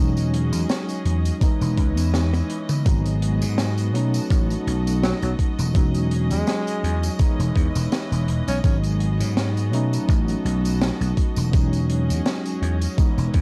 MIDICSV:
0, 0, Header, 1, 6, 480
1, 0, Start_track
1, 0, Tempo, 722892
1, 1900, Time_signature, 4, 2, 24, 8
1, 8907, End_track
2, 0, Start_track
2, 0, Title_t, "String section"
2, 0, Program_c, 0, 48
2, 0, Note_on_c, 0, 61, 78
2, 0, Note_on_c, 0, 66, 75
2, 0, Note_on_c, 0, 68, 74
2, 0, Note_on_c, 0, 75, 86
2, 913, Note_off_c, 0, 75, 0
2, 915, Note_off_c, 0, 66, 0
2, 931, Note_off_c, 0, 61, 0
2, 933, Note_off_c, 0, 68, 0
2, 938, Note_on_c, 0, 52, 74
2, 940, Note_on_c, 0, 61, 81
2, 941, Note_on_c, 0, 75, 89
2, 942, Note_on_c, 0, 71, 72
2, 1890, Note_off_c, 0, 52, 0
2, 1890, Note_off_c, 0, 61, 0
2, 1892, Note_off_c, 0, 71, 0
2, 1898, Note_on_c, 0, 59, 80
2, 1899, Note_on_c, 0, 66, 76
2, 1899, Note_on_c, 0, 68, 71
2, 2613, Note_off_c, 0, 68, 0
2, 2618, Note_on_c, 0, 69, 73
2, 3800, Note_off_c, 0, 59, 0
2, 3807, Note_off_c, 0, 69, 0
2, 3820, Note_on_c, 0, 61, 81
2, 3821, Note_on_c, 0, 68, 76
2, 4753, Note_off_c, 0, 66, 0
2, 4771, Note_off_c, 0, 68, 0
2, 4778, Note_on_c, 0, 52, 75
2, 4779, Note_on_c, 0, 71, 73
2, 5721, Note_off_c, 0, 61, 0
2, 5730, Note_off_c, 0, 52, 0
2, 5730, Note_off_c, 0, 71, 0
2, 5738, Note_on_c, 0, 68, 73
2, 5739, Note_on_c, 0, 59, 83
2, 5739, Note_on_c, 0, 66, 77
2, 6452, Note_off_c, 0, 68, 0
2, 6467, Note_on_c, 0, 69, 72
2, 7640, Note_off_c, 0, 59, 0
2, 7652, Note_off_c, 0, 69, 0
2, 7661, Note_on_c, 0, 61, 81
2, 7663, Note_on_c, 0, 68, 72
2, 8593, Note_off_c, 0, 66, 0
2, 8612, Note_off_c, 0, 68, 0
2, 8626, Note_on_c, 0, 52, 73
2, 8627, Note_on_c, 0, 71, 75
2, 8907, Note_off_c, 0, 52, 0
2, 8907, Note_off_c, 0, 61, 0
2, 8907, Note_off_c, 0, 71, 0
2, 8907, Note_off_c, 0, 75, 0
2, 8907, End_track
3, 0, Start_track
3, 0, Title_t, "Tine electric piano"
3, 0, Program_c, 1, 4
3, 0, Note_on_c, 1, 54, 79
3, 0, Note_on_c, 1, 56, 72
3, 0, Note_on_c, 1, 61, 72
3, 0, Note_on_c, 1, 63, 90
3, 115, Control_c, 1, 64, 127
3, 891, Note_off_c, 1, 54, 0
3, 894, Note_off_c, 1, 56, 0
3, 898, Note_off_c, 1, 61, 0
3, 901, Note_off_c, 1, 63, 0
3, 931, Note_on_c, 1, 52, 79
3, 937, Note_on_c, 1, 56, 71
3, 944, Note_on_c, 1, 59, 73
3, 948, Control_c, 1, 64, 0
3, 950, Note_on_c, 1, 63, 87
3, 1071, Control_c, 1, 64, 127
3, 1852, Note_off_c, 1, 52, 0
3, 1854, Note_off_c, 1, 56, 0
3, 1858, Note_off_c, 1, 59, 0
3, 1861, Note_off_c, 1, 63, 0
3, 1894, Note_on_c, 1, 54, 78
3, 1900, Note_on_c, 1, 56, 73
3, 1907, Note_on_c, 1, 59, 73
3, 1908, Control_c, 1, 64, 0
3, 1914, Note_on_c, 1, 63, 88
3, 2027, Control_c, 1, 64, 127
3, 2573, Note_off_c, 1, 54, 0
3, 2576, Note_off_c, 1, 56, 0
3, 2579, Note_off_c, 1, 59, 0
3, 2583, Note_off_c, 1, 63, 0
3, 2612, Note_on_c, 1, 54, 92
3, 2619, Note_on_c, 1, 57, 84
3, 2626, Note_on_c, 1, 61, 85
3, 2630, Control_c, 1, 64, 0
3, 2634, Note_on_c, 1, 63, 100
3, 2728, Control_c, 1, 64, 127
3, 3772, Note_off_c, 1, 54, 0
3, 3776, Note_off_c, 1, 57, 0
3, 3779, Note_off_c, 1, 61, 0
3, 3783, Note_off_c, 1, 63, 0
3, 3812, Note_on_c, 1, 54, 79
3, 3819, Note_on_c, 1, 56, 72
3, 3826, Note_on_c, 1, 61, 74
3, 3829, Control_c, 1, 64, 0
3, 3832, Note_on_c, 1, 63, 88
3, 3962, Control_c, 1, 64, 127
3, 4732, Note_off_c, 1, 54, 0
3, 4736, Note_off_c, 1, 56, 0
3, 4739, Note_off_c, 1, 61, 0
3, 4742, Note_off_c, 1, 63, 0
3, 4773, Note_on_c, 1, 52, 79
3, 4777, Note_on_c, 1, 56, 74
3, 4785, Note_on_c, 1, 59, 74
3, 4789, Control_c, 1, 64, 0
3, 4791, Note_on_c, 1, 63, 86
3, 4889, Control_c, 1, 64, 127
3, 5692, Note_off_c, 1, 52, 0
3, 5695, Note_off_c, 1, 56, 0
3, 5699, Note_off_c, 1, 59, 0
3, 5702, Note_off_c, 1, 63, 0
3, 5733, Note_on_c, 1, 54, 82
3, 5739, Note_on_c, 1, 56, 75
3, 5746, Note_on_c, 1, 59, 73
3, 5748, Control_c, 1, 64, 0
3, 5752, Note_on_c, 1, 63, 89
3, 5883, Control_c, 1, 64, 127
3, 6413, Note_off_c, 1, 54, 0
3, 6416, Note_off_c, 1, 56, 0
3, 6419, Note_off_c, 1, 59, 0
3, 6422, Note_off_c, 1, 63, 0
3, 6451, Note_on_c, 1, 54, 90
3, 6459, Note_on_c, 1, 57, 85
3, 6465, Note_on_c, 1, 61, 85
3, 6468, Control_c, 1, 64, 0
3, 6471, Note_on_c, 1, 63, 101
3, 6564, Control_c, 1, 64, 127
3, 7612, Note_off_c, 1, 54, 0
3, 7616, Note_off_c, 1, 57, 0
3, 7619, Note_off_c, 1, 61, 0
3, 7622, Note_off_c, 1, 63, 0
3, 7648, Note_on_c, 1, 54, 80
3, 7656, Note_on_c, 1, 56, 71
3, 7661, Note_on_c, 1, 61, 72
3, 7669, Note_on_c, 1, 63, 87
3, 7670, Control_c, 1, 64, 0
3, 7789, Control_c, 1, 64, 127
3, 8570, Note_off_c, 1, 54, 0
3, 8574, Note_off_c, 1, 56, 0
3, 8577, Note_off_c, 1, 61, 0
3, 8581, Note_off_c, 1, 63, 0
3, 8610, Note_on_c, 1, 52, 81
3, 8617, Note_on_c, 1, 56, 75
3, 8624, Note_on_c, 1, 59, 76
3, 8629, Control_c, 1, 64, 0
3, 8631, Note_on_c, 1, 63, 88
3, 8730, Control_c, 1, 64, 127
3, 8907, Note_off_c, 1, 52, 0
3, 8907, Note_off_c, 1, 56, 0
3, 8907, Note_off_c, 1, 59, 0
3, 8907, Note_off_c, 1, 63, 0
3, 8907, End_track
4, 0, Start_track
4, 0, Title_t, "Tenor saxophone"
4, 0, Program_c, 2, 66
4, 3343, Note_on_c, 2, 54, 90
4, 3425, Note_off_c, 2, 54, 0
4, 3472, Note_on_c, 2, 54, 76
4, 3541, Note_off_c, 2, 54, 0
4, 4191, Note_on_c, 2, 56, 95
4, 4671, Note_off_c, 2, 56, 0
4, 5634, Note_on_c, 2, 61, 90
4, 5703, Note_off_c, 2, 61, 0
4, 5742, Note_on_c, 2, 61, 76
4, 5824, Note_off_c, 2, 61, 0
4, 8907, End_track
5, 0, Start_track
5, 0, Title_t, "Slap bass"
5, 0, Program_c, 3, 36
5, 0, Note_on_c, 3, 28, 93
5, 347, Note_off_c, 3, 28, 0
5, 347, Note_on_c, 3, 40, 104
5, 418, Note_off_c, 3, 40, 0
5, 699, Note_on_c, 3, 40, 82
5, 857, Note_off_c, 3, 40, 0
5, 1069, Note_on_c, 3, 28, 102
5, 1178, Note_off_c, 3, 28, 0
5, 1178, Note_on_c, 3, 37, 88
5, 1311, Note_off_c, 3, 37, 0
5, 1311, Note_on_c, 3, 40, 94
5, 1595, Note_off_c, 3, 40, 0
5, 1898, Note_on_c, 3, 32, 98
5, 2270, Note_on_c, 3, 44, 102
5, 2280, Note_off_c, 3, 32, 0
5, 2622, Note_off_c, 3, 44, 0
5, 2622, Note_on_c, 3, 47, 82
5, 2779, Note_off_c, 3, 47, 0
5, 2858, Note_on_c, 3, 33, 97
5, 3017, Note_off_c, 3, 33, 0
5, 3101, Note_on_c, 3, 35, 99
5, 3393, Note_off_c, 3, 35, 0
5, 3468, Note_on_c, 3, 35, 89
5, 3538, Note_off_c, 3, 35, 0
5, 3710, Note_on_c, 3, 28, 92
5, 4188, Note_on_c, 3, 40, 104
5, 4198, Note_off_c, 3, 28, 0
5, 4258, Note_off_c, 3, 40, 0
5, 4538, Note_on_c, 3, 40, 83
5, 4697, Note_off_c, 3, 40, 0
5, 4908, Note_on_c, 3, 28, 100
5, 4979, Note_off_c, 3, 28, 0
5, 5016, Note_on_c, 3, 40, 87
5, 5100, Note_off_c, 3, 40, 0
5, 5148, Note_on_c, 3, 28, 88
5, 5218, Note_off_c, 3, 28, 0
5, 5388, Note_on_c, 3, 28, 92
5, 5458, Note_off_c, 3, 28, 0
5, 5500, Note_on_c, 3, 28, 87
5, 5582, Note_off_c, 3, 28, 0
5, 5628, Note_on_c, 3, 35, 107
5, 5698, Note_off_c, 3, 35, 0
5, 5737, Note_on_c, 3, 32, 100
5, 6108, Note_on_c, 3, 44, 105
5, 6118, Note_off_c, 3, 32, 0
5, 6460, Note_off_c, 3, 44, 0
5, 6460, Note_on_c, 3, 47, 83
5, 6618, Note_off_c, 3, 47, 0
5, 6698, Note_on_c, 3, 33, 98
5, 6857, Note_off_c, 3, 33, 0
5, 6939, Note_on_c, 3, 35, 100
5, 7232, Note_off_c, 3, 35, 0
5, 7308, Note_on_c, 3, 35, 90
5, 7378, Note_off_c, 3, 35, 0
5, 7548, Note_on_c, 3, 28, 95
5, 8029, Note_on_c, 3, 40, 105
5, 8039, Note_off_c, 3, 28, 0
5, 8099, Note_off_c, 3, 40, 0
5, 8378, Note_on_c, 3, 40, 81
5, 8537, Note_off_c, 3, 40, 0
5, 8748, Note_on_c, 3, 28, 100
5, 8818, Note_off_c, 3, 28, 0
5, 8858, Note_on_c, 3, 40, 87
5, 8907, Note_off_c, 3, 40, 0
5, 8907, End_track
6, 0, Start_track
6, 0, Title_t, "Drums"
6, 111, Note_on_c, 9, 54, 28
6, 115, Note_on_c, 9, 42, 58
6, 177, Note_off_c, 9, 54, 0
6, 182, Note_off_c, 9, 42, 0
6, 224, Note_on_c, 9, 42, 97
6, 290, Note_off_c, 9, 42, 0
6, 350, Note_on_c, 9, 42, 65
6, 350, Note_on_c, 9, 54, 60
6, 416, Note_off_c, 9, 54, 0
6, 417, Note_off_c, 9, 42, 0
6, 460, Note_on_c, 9, 54, 47
6, 463, Note_on_c, 9, 38, 109
6, 464, Note_on_c, 9, 42, 96
6, 526, Note_off_c, 9, 54, 0
6, 529, Note_off_c, 9, 38, 0
6, 530, Note_off_c, 9, 42, 0
6, 589, Note_on_c, 9, 54, 28
6, 594, Note_on_c, 9, 42, 53
6, 655, Note_off_c, 9, 54, 0
6, 660, Note_off_c, 9, 42, 0
6, 700, Note_on_c, 9, 42, 87
6, 767, Note_off_c, 9, 42, 0
6, 832, Note_on_c, 9, 42, 69
6, 834, Note_on_c, 9, 54, 52
6, 899, Note_off_c, 9, 42, 0
6, 900, Note_off_c, 9, 54, 0
6, 938, Note_on_c, 9, 36, 116
6, 939, Note_on_c, 9, 54, 50
6, 942, Note_on_c, 9, 42, 89
6, 1004, Note_off_c, 9, 36, 0
6, 1006, Note_off_c, 9, 54, 0
6, 1009, Note_off_c, 9, 42, 0
6, 1070, Note_on_c, 9, 54, 26
6, 1073, Note_on_c, 9, 42, 52
6, 1137, Note_off_c, 9, 54, 0
6, 1140, Note_off_c, 9, 42, 0
6, 1178, Note_on_c, 9, 36, 60
6, 1178, Note_on_c, 9, 42, 83
6, 1244, Note_off_c, 9, 42, 0
6, 1245, Note_off_c, 9, 36, 0
6, 1309, Note_on_c, 9, 42, 72
6, 1310, Note_on_c, 9, 54, 58
6, 1376, Note_off_c, 9, 42, 0
6, 1376, Note_off_c, 9, 54, 0
6, 1418, Note_on_c, 9, 38, 123
6, 1418, Note_on_c, 9, 48, 58
6, 1419, Note_on_c, 9, 42, 87
6, 1422, Note_on_c, 9, 54, 46
6, 1484, Note_off_c, 9, 48, 0
6, 1485, Note_off_c, 9, 38, 0
6, 1485, Note_off_c, 9, 42, 0
6, 1489, Note_off_c, 9, 54, 0
6, 1549, Note_on_c, 9, 48, 62
6, 1552, Note_on_c, 9, 42, 57
6, 1556, Note_on_c, 9, 54, 27
6, 1616, Note_off_c, 9, 48, 0
6, 1618, Note_off_c, 9, 42, 0
6, 1622, Note_off_c, 9, 54, 0
6, 1658, Note_on_c, 9, 42, 81
6, 1724, Note_off_c, 9, 42, 0
6, 1786, Note_on_c, 9, 42, 71
6, 1786, Note_on_c, 9, 54, 61
6, 1787, Note_on_c, 9, 45, 78
6, 1852, Note_off_c, 9, 42, 0
6, 1853, Note_off_c, 9, 54, 0
6, 1854, Note_off_c, 9, 45, 0
6, 1897, Note_on_c, 9, 42, 100
6, 1899, Note_on_c, 9, 36, 120
6, 1903, Note_on_c, 9, 54, 45
6, 1964, Note_off_c, 9, 42, 0
6, 1965, Note_off_c, 9, 36, 0
6, 1970, Note_off_c, 9, 54, 0
6, 2030, Note_on_c, 9, 42, 58
6, 2030, Note_on_c, 9, 54, 27
6, 2096, Note_off_c, 9, 42, 0
6, 2096, Note_off_c, 9, 54, 0
6, 2140, Note_on_c, 9, 42, 93
6, 2207, Note_off_c, 9, 42, 0
6, 2269, Note_on_c, 9, 42, 71
6, 2269, Note_on_c, 9, 54, 59
6, 2335, Note_off_c, 9, 42, 0
6, 2336, Note_off_c, 9, 54, 0
6, 2377, Note_on_c, 9, 38, 121
6, 2379, Note_on_c, 9, 42, 91
6, 2381, Note_on_c, 9, 54, 54
6, 2444, Note_off_c, 9, 38, 0
6, 2445, Note_off_c, 9, 42, 0
6, 2447, Note_off_c, 9, 54, 0
6, 2508, Note_on_c, 9, 54, 31
6, 2511, Note_on_c, 9, 42, 56
6, 2574, Note_off_c, 9, 54, 0
6, 2578, Note_off_c, 9, 42, 0
6, 2623, Note_on_c, 9, 42, 93
6, 2689, Note_off_c, 9, 42, 0
6, 2749, Note_on_c, 9, 54, 60
6, 2750, Note_on_c, 9, 42, 71
6, 2816, Note_off_c, 9, 42, 0
6, 2816, Note_off_c, 9, 54, 0
6, 2859, Note_on_c, 9, 36, 118
6, 2864, Note_on_c, 9, 54, 46
6, 2865, Note_on_c, 9, 42, 93
6, 2925, Note_off_c, 9, 36, 0
6, 2930, Note_off_c, 9, 54, 0
6, 2932, Note_off_c, 9, 42, 0
6, 2991, Note_on_c, 9, 54, 27
6, 2996, Note_on_c, 9, 42, 54
6, 3057, Note_off_c, 9, 54, 0
6, 3062, Note_off_c, 9, 42, 0
6, 3104, Note_on_c, 9, 42, 96
6, 3170, Note_off_c, 9, 42, 0
6, 3235, Note_on_c, 9, 42, 66
6, 3236, Note_on_c, 9, 54, 56
6, 3301, Note_off_c, 9, 42, 0
6, 3302, Note_off_c, 9, 54, 0
6, 3343, Note_on_c, 9, 38, 114
6, 3343, Note_on_c, 9, 42, 91
6, 3343, Note_on_c, 9, 54, 48
6, 3409, Note_off_c, 9, 38, 0
6, 3409, Note_off_c, 9, 42, 0
6, 3409, Note_off_c, 9, 54, 0
6, 3468, Note_on_c, 9, 54, 28
6, 3469, Note_on_c, 9, 42, 51
6, 3535, Note_off_c, 9, 54, 0
6, 3536, Note_off_c, 9, 42, 0
6, 3578, Note_on_c, 9, 36, 63
6, 3581, Note_on_c, 9, 42, 91
6, 3645, Note_off_c, 9, 36, 0
6, 3648, Note_off_c, 9, 42, 0
6, 3710, Note_on_c, 9, 42, 65
6, 3713, Note_on_c, 9, 54, 60
6, 3776, Note_off_c, 9, 42, 0
6, 3779, Note_off_c, 9, 54, 0
6, 3818, Note_on_c, 9, 36, 127
6, 3818, Note_on_c, 9, 54, 46
6, 3822, Note_on_c, 9, 42, 95
6, 3884, Note_off_c, 9, 36, 0
6, 3885, Note_off_c, 9, 54, 0
6, 3888, Note_off_c, 9, 42, 0
6, 3947, Note_on_c, 9, 42, 56
6, 3949, Note_on_c, 9, 54, 29
6, 4013, Note_off_c, 9, 42, 0
6, 4015, Note_off_c, 9, 54, 0
6, 4059, Note_on_c, 9, 42, 87
6, 4125, Note_off_c, 9, 42, 0
6, 4187, Note_on_c, 9, 42, 65
6, 4190, Note_on_c, 9, 54, 55
6, 4253, Note_off_c, 9, 42, 0
6, 4256, Note_off_c, 9, 54, 0
6, 4296, Note_on_c, 9, 54, 48
6, 4300, Note_on_c, 9, 38, 116
6, 4300, Note_on_c, 9, 42, 101
6, 4363, Note_off_c, 9, 54, 0
6, 4366, Note_off_c, 9, 38, 0
6, 4367, Note_off_c, 9, 42, 0
6, 4430, Note_on_c, 9, 54, 30
6, 4435, Note_on_c, 9, 42, 59
6, 4496, Note_off_c, 9, 54, 0
6, 4501, Note_off_c, 9, 42, 0
6, 4543, Note_on_c, 9, 42, 87
6, 4610, Note_off_c, 9, 42, 0
6, 4669, Note_on_c, 9, 42, 64
6, 4671, Note_on_c, 9, 54, 54
6, 4735, Note_off_c, 9, 42, 0
6, 4737, Note_off_c, 9, 54, 0
6, 4774, Note_on_c, 9, 54, 50
6, 4777, Note_on_c, 9, 36, 123
6, 4778, Note_on_c, 9, 42, 94
6, 4841, Note_off_c, 9, 54, 0
6, 4844, Note_off_c, 9, 36, 0
6, 4845, Note_off_c, 9, 42, 0
6, 4912, Note_on_c, 9, 42, 56
6, 4913, Note_on_c, 9, 54, 29
6, 4978, Note_off_c, 9, 42, 0
6, 4979, Note_off_c, 9, 54, 0
6, 5017, Note_on_c, 9, 36, 66
6, 5026, Note_on_c, 9, 42, 87
6, 5084, Note_off_c, 9, 36, 0
6, 5093, Note_off_c, 9, 42, 0
6, 5149, Note_on_c, 9, 54, 61
6, 5153, Note_on_c, 9, 42, 75
6, 5215, Note_off_c, 9, 54, 0
6, 5220, Note_off_c, 9, 42, 0
6, 5259, Note_on_c, 9, 42, 89
6, 5260, Note_on_c, 9, 54, 45
6, 5262, Note_on_c, 9, 38, 120
6, 5325, Note_off_c, 9, 42, 0
6, 5326, Note_off_c, 9, 54, 0
6, 5328, Note_off_c, 9, 38, 0
6, 5393, Note_on_c, 9, 54, 25
6, 5394, Note_on_c, 9, 42, 58
6, 5459, Note_off_c, 9, 54, 0
6, 5461, Note_off_c, 9, 42, 0
6, 5499, Note_on_c, 9, 42, 94
6, 5565, Note_off_c, 9, 42, 0
6, 5629, Note_on_c, 9, 42, 69
6, 5631, Note_on_c, 9, 54, 55
6, 5695, Note_off_c, 9, 42, 0
6, 5698, Note_off_c, 9, 54, 0
6, 5737, Note_on_c, 9, 36, 127
6, 5738, Note_on_c, 9, 54, 42
6, 5742, Note_on_c, 9, 42, 94
6, 5803, Note_off_c, 9, 36, 0
6, 5805, Note_off_c, 9, 54, 0
6, 5809, Note_off_c, 9, 42, 0
6, 5866, Note_on_c, 9, 42, 54
6, 5872, Note_on_c, 9, 54, 27
6, 5933, Note_off_c, 9, 42, 0
6, 5938, Note_off_c, 9, 54, 0
6, 5978, Note_on_c, 9, 42, 83
6, 6044, Note_off_c, 9, 42, 0
6, 6111, Note_on_c, 9, 54, 58
6, 6112, Note_on_c, 9, 42, 63
6, 6178, Note_off_c, 9, 42, 0
6, 6178, Note_off_c, 9, 54, 0
6, 6221, Note_on_c, 9, 38, 117
6, 6222, Note_on_c, 9, 42, 94
6, 6222, Note_on_c, 9, 54, 46
6, 6287, Note_off_c, 9, 38, 0
6, 6288, Note_off_c, 9, 42, 0
6, 6288, Note_off_c, 9, 54, 0
6, 6354, Note_on_c, 9, 42, 51
6, 6355, Note_on_c, 9, 54, 25
6, 6420, Note_off_c, 9, 42, 0
6, 6421, Note_off_c, 9, 54, 0
6, 6462, Note_on_c, 9, 42, 94
6, 6528, Note_off_c, 9, 42, 0
6, 6593, Note_on_c, 9, 42, 69
6, 6597, Note_on_c, 9, 54, 50
6, 6659, Note_off_c, 9, 42, 0
6, 6664, Note_off_c, 9, 54, 0
6, 6698, Note_on_c, 9, 36, 126
6, 6705, Note_on_c, 9, 54, 42
6, 6711, Note_on_c, 9, 42, 84
6, 6764, Note_off_c, 9, 36, 0
6, 6771, Note_off_c, 9, 54, 0
6, 6777, Note_off_c, 9, 42, 0
6, 6826, Note_on_c, 9, 54, 26
6, 6832, Note_on_c, 9, 42, 54
6, 6893, Note_off_c, 9, 54, 0
6, 6899, Note_off_c, 9, 42, 0
6, 6943, Note_on_c, 9, 42, 95
6, 7010, Note_off_c, 9, 42, 0
6, 7072, Note_on_c, 9, 42, 65
6, 7074, Note_on_c, 9, 54, 54
6, 7138, Note_off_c, 9, 42, 0
6, 7140, Note_off_c, 9, 54, 0
6, 7180, Note_on_c, 9, 42, 96
6, 7181, Note_on_c, 9, 54, 46
6, 7182, Note_on_c, 9, 38, 127
6, 7247, Note_off_c, 9, 42, 0
6, 7247, Note_off_c, 9, 54, 0
6, 7248, Note_off_c, 9, 38, 0
6, 7312, Note_on_c, 9, 54, 26
6, 7313, Note_on_c, 9, 42, 50
6, 7379, Note_off_c, 9, 42, 0
6, 7379, Note_off_c, 9, 54, 0
6, 7418, Note_on_c, 9, 36, 66
6, 7419, Note_on_c, 9, 42, 84
6, 7484, Note_off_c, 9, 36, 0
6, 7485, Note_off_c, 9, 42, 0
6, 7545, Note_on_c, 9, 54, 58
6, 7549, Note_on_c, 9, 42, 72
6, 7612, Note_off_c, 9, 54, 0
6, 7616, Note_off_c, 9, 42, 0
6, 7658, Note_on_c, 9, 36, 125
6, 7659, Note_on_c, 9, 42, 88
6, 7659, Note_on_c, 9, 54, 42
6, 7725, Note_off_c, 9, 36, 0
6, 7726, Note_off_c, 9, 42, 0
6, 7726, Note_off_c, 9, 54, 0
6, 7789, Note_on_c, 9, 42, 55
6, 7789, Note_on_c, 9, 54, 26
6, 7855, Note_off_c, 9, 42, 0
6, 7855, Note_off_c, 9, 54, 0
6, 7899, Note_on_c, 9, 42, 95
6, 7966, Note_off_c, 9, 42, 0
6, 8036, Note_on_c, 9, 42, 68
6, 8036, Note_on_c, 9, 54, 55
6, 8102, Note_off_c, 9, 42, 0
6, 8103, Note_off_c, 9, 54, 0
6, 8139, Note_on_c, 9, 42, 92
6, 8141, Note_on_c, 9, 38, 127
6, 8141, Note_on_c, 9, 54, 41
6, 8205, Note_off_c, 9, 42, 0
6, 8207, Note_off_c, 9, 38, 0
6, 8207, Note_off_c, 9, 54, 0
6, 8271, Note_on_c, 9, 42, 53
6, 8271, Note_on_c, 9, 54, 27
6, 8337, Note_off_c, 9, 42, 0
6, 8338, Note_off_c, 9, 54, 0
6, 8384, Note_on_c, 9, 42, 83
6, 8450, Note_off_c, 9, 42, 0
6, 8509, Note_on_c, 9, 42, 67
6, 8511, Note_on_c, 9, 54, 50
6, 8576, Note_off_c, 9, 42, 0
6, 8577, Note_off_c, 9, 54, 0
6, 8619, Note_on_c, 9, 36, 125
6, 8619, Note_on_c, 9, 42, 84
6, 8623, Note_on_c, 9, 54, 43
6, 8685, Note_off_c, 9, 36, 0
6, 8686, Note_off_c, 9, 42, 0
6, 8690, Note_off_c, 9, 54, 0
6, 8751, Note_on_c, 9, 54, 26
6, 8754, Note_on_c, 9, 42, 52
6, 8818, Note_off_c, 9, 54, 0
6, 8821, Note_off_c, 9, 42, 0
6, 8856, Note_on_c, 9, 42, 86
6, 8859, Note_on_c, 9, 36, 66
6, 8907, Note_off_c, 9, 36, 0
6, 8907, Note_off_c, 9, 42, 0
6, 8907, End_track
0, 0, End_of_file